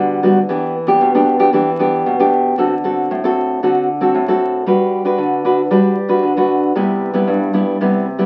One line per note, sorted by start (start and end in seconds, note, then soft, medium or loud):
0.00 0.47 D3 medium
0.00 0.18 G3 medium
0.00 0.18 B3 medium
0.00 0.19 F#4 medium
0.23 0.38 G3 medium
0.23 0.39 B3 medium
0.23 0.39 F#4 medium
0.49 0.99 E3 medium
0.49 0.74 B3 soft
0.49 0.74 D4 soft
0.49 0.74 G4 medium
0.87 1.10 B3 medium
0.87 1.10 D4 medium
0.87 1.10 G4 medium
1.01 1.51 B2 medium
1.15 1.36 B3 medium
1.15 1.37 D4 medium
1.15 1.37 G4 medium
1.39 1.49 B3 medium
1.39 1.49 D4 medium
1.39 1.49 G4 medium
1.53 2.03 E3 medium
1.53 1.69 B3 medium
1.53 1.69 D4 medium
1.53 1.69 G4 medium
1.79 2.14 B3 medium
1.79 2.15 D4 medium
1.79 2.15 G4 medium
2.06 2.56 B2 medium
2.19 2.54 B3 medium
2.19 2.54 D4 medium
2.19 2.55 G4 medium
2.58 3.08 D3 medium
2.58 2.73 C4 medium
2.58 2.74 F#4 medium
2.58 2.74 A4 medium
2.84 3.19 C4 medium
2.84 3.19 F#4 medium
2.84 3.20 A4 medium
3.11 3.60 A2 medium
3.24 3.59 C4 medium
3.24 3.59 F#4 medium
3.24 3.59 A4 medium
3.63 4.12 D3 medium
3.63 3.87 C4 medium
3.63 3.88 F#4 medium
3.63 3.88 A4 medium
4.01 4.23 C4 medium
4.01 4.23 F#4 medium
4.01 4.23 A4 medium
4.15 4.64 A2 medium
4.28 4.63 C4 medium
4.28 4.63 F#4 medium
4.28 4.63 A4 medium
4.66 5.16 G3 medium
4.66 5.02 D4 medium
4.66 5.02 F#4 medium
4.66 5.02 B4 medium
5.05 5.40 D4 medium
5.05 5.41 F#4 medium
5.05 5.41 B4 medium
5.18 5.68 D3 medium
5.45 5.60 D4 medium
5.45 5.61 F#4 medium
5.45 5.61 B4 medium
5.71 6.21 G3 medium
5.71 5.96 D4 medium
5.71 5.96 F#4 medium
5.71 5.96 B4 medium
6.09 6.32 D4 medium
6.09 6.32 F#4 medium
6.09 6.32 B4 medium
6.23 6.73 D3 medium
6.37 6.72 D4 medium
6.37 6.72 F#4 medium
6.37 6.72 B4 medium
6.75 7.25 C3 medium
6.75 7.11 G3 medium
6.75 7.11 B3 medium
6.75 7.11 E4 medium
7.13 7.49 G3 medium
7.13 7.50 B3 medium
7.13 7.50 E4 medium
7.28 7.77 G2 medium
7.53 7.76 G3 medium
7.53 7.76 B3 medium
7.53 7.76 E4 medium
7.81 8.26 C3 medium
7.81 8.05 G3 soft
7.81 8.05 B3 medium
7.81 8.05 E4 medium
8.19 8.26 G3 medium
8.19 8.26 B3 medium
8.19 8.26 E4 medium